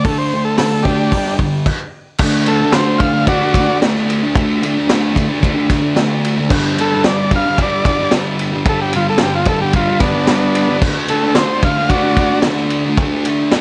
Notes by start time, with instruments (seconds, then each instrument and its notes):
0.05 distorted electric guitar D3 A3 D4, transistor combo organ A4, kick, open hi-hat
0.18 transistor combo organ C5
0.34 distorted electric guitar D3 A3
0.45 transistor combo organ A4
0.58 distorted electric guitar D3 A3, transistor combo organ A4, snare, open hi-hat
0.83 distorted electric guitar D3 A3, transistor combo organ D4 G4, kick
0.88 distorted electric guitar D4
1.12 distorted electric guitar G2 D3 G3, kick, open hi-hat
1.25 snare
1.39 distorted electric guitar G2 D3, kick
1.66 kick, crash
2.18 distorted electric guitar D3 A3, kick, crash
2.24 distorted electric guitar D4
2.46 distorted electric guitar D3 A3, transistor combo organ A4, ride
2.51 distorted electric guitar D4
2.61 distorted electric guitar D4
2.65 distorted electric guitar A3
2.72 distorted electric guitar D3 A3, transistor combo organ C5, snare, ride
2.77 distorted electric guitar D4
2.98 distorted electric guitar D3, transistor combo organ F5, kick, ride
3.02 distorted electric guitar A3 D4
3.14 distorted electric guitar D4
3.18 distorted electric guitar A3
3.27 distorted electric guitar D3 A3, transistor combo organ F#4 D5, kick, ride
3.32 distorted electric guitar D4
3.42 distorted electric guitar A3 D4
3.54 distorted electric guitar D3 A3, kick, ride
3.60 distorted electric guitar D4
3.69 distorted electric guitar A3 D4
3.82 distorted electric guitar D3 A3, snare, ride
3.86 distorted electric guitar D4
3.95 snare
4.10 ride
4.23 distorted electric guitar A3 D4
4.35 distorted electric guitar D3 A3 D4, kick, ride
4.61 distorted electric guitar D3 A3, ride
4.66 distorted electric guitar D4
4.74 distorted electric guitar D4
4.79 distorted electric guitar A3
4.88 distorted electric guitar D3 A3, snare, ride
4.92 distorted electric guitar D4
5.14 distorted electric guitar D3 A3, kick, ride
5.18 distorted electric guitar D4
5.28 distorted electric guitar A3 D4
5.40 distorted electric guitar D3 A3, kick, ride
5.44 distorted electric guitar D4
5.55 distorted electric guitar A3 D4
5.68 distorted electric guitar D3 A3 D4, kick, snare, ride
5.82 distorted electric guitar A3 D4
5.95 distorted electric guitar D3 A3, snare, ride
5.99 distorted electric guitar D4
6.24 ride
6.37 distorted electric guitar D4
6.41 distorted electric guitar A3
6.50 distorted electric guitar G2 D3 G3, kick, crash
6.77 distorted electric guitar G2 D3 G3, transistor combo organ A4, ride
6.91 distorted electric guitar G3
6.96 distorted electric guitar D3
7.04 distorted electric guitar G2 D3, transistor combo organ D5, snare, ride
7.09 distorted electric guitar G3
7.31 distorted electric guitar G2 D3 G3, kick, ride
7.36 transistor combo organ F5
7.46 distorted electric guitar G3
7.50 distorted electric guitar D3
7.58 distorted electric guitar G2 D3, kick, ride
7.62 distorted electric guitar G3, transistor combo organ D5
7.71 distorted electric guitar D3 G3
7.85 distorted electric guitar G2 D3, kick, ride
7.89 distorted electric guitar G3
7.99 distorted electric guitar G3
8.03 distorted electric guitar D3
8.11 distorted electric guitar G2 D3 G3, snare, ride
8.39 ride
8.52 distorted electric guitar G3
8.56 distorted electric guitar D3
8.65 distorted electric guitar G2 D3, transistor combo organ A4, kick, ride
8.70 distorted electric guitar G3
8.82 transistor combo organ G4
8.93 distorted electric guitar G2 D3, transistor combo organ F4, ride
8.97 distorted electric guitar G3
9.06 distorted electric guitar G3, transistor combo organ A4
9.10 distorted electric guitar D3
9.18 distorted electric guitar G2 D3, snare, ride
9.23 distorted electric guitar G3, transistor combo organ G4
9.35 transistor combo organ F4
9.45 distorted electric guitar G2, transistor combo organ A4, kick, ride
9.49 distorted electric guitar D3 G3
9.60 distorted electric guitar G3, transistor combo organ G4
9.64 distorted electric guitar D3
9.73 distorted electric guitar G2 D3, transistor combo organ F4, kick, ride
9.78 distorted electric guitar G3
9.87 distorted electric guitar D3 G3
10.00 distorted electric guitar G2 D3, transistor combo organ B3 D4, kick, snare, ride
10.05 distorted electric guitar G3
10.14 distorted electric guitar D3 G3
10.27 distorted electric guitar G2 D3 G3, snare, ride
10.55 ride
10.68 distorted electric guitar D3 G3
10.82 distorted electric guitar D3 A3 D4, kick, crash
11.08 distorted electric guitar D3 A3, transistor combo organ A4, ride
11.13 distorted electric guitar D4
11.23 distorted electric guitar A3 D4
11.35 distorted electric guitar D3 A3, transistor combo organ C5, snare, ride
11.39 distorted electric guitar D4
11.62 distorted electric guitar D3 A3, transistor combo organ F5, kick, ride
11.67 distorted electric guitar D4
11.77 distorted electric guitar D4
11.82 distorted electric guitar A3
11.89 distorted electric guitar D3 A3, transistor combo organ F#4 D5, kick, ride
11.94 distorted electric guitar D4
12.04 distorted electric guitar D4
12.08 distorted electric guitar A3
12.17 distorted electric guitar D3 A3 D4, kick, ride
12.30 distorted electric guitar D4
12.34 distorted electric guitar A3
12.42 distorted electric guitar D3, snare, ride
12.47 distorted electric guitar A3 D4
12.56 snare
12.70 ride
12.85 distorted electric guitar D4
12.90 distorted electric guitar A3
12.97 distorted electric guitar D3 A3, kick, ride
13.03 distorted electric guitar D4
13.25 distorted electric guitar D3 A3, ride
13.30 distorted electric guitar D4
13.39 distorted electric guitar A3 D4
13.51 distorted electric guitar D3 A3 D4, snare, ride